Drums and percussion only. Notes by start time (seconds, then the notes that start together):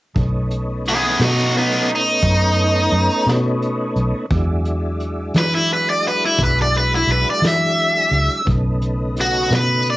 0.16 kick, closed hi-hat
0.51 closed hi-hat
0.86 snare, closed hi-hat
1.20 snare, closed hi-hat
1.54 closed hi-hat
1.88 closed hi-hat
2.22 kick, closed hi-hat
2.57 closed hi-hat
2.92 closed hi-hat
3.27 snare, closed hi-hat
3.62 closed hi-hat
3.96 closed hi-hat
4.30 kick, closed hi-hat
4.65 closed hi-hat
5.00 closed hi-hat
5.34 snare, closed hi-hat
5.69 closed hi-hat
6.04 closed hi-hat
6.39 kick, closed hi-hat
6.74 closed hi-hat
7.08 closed hi-hat
7.43 snare, closed hi-hat
7.78 closed hi-hat
8.13 closed hi-hat
8.47 kick, closed hi-hat
8.82 closed hi-hat
9.16 snare, closed hi-hat
9.51 snare, closed hi-hat
9.85 closed hi-hat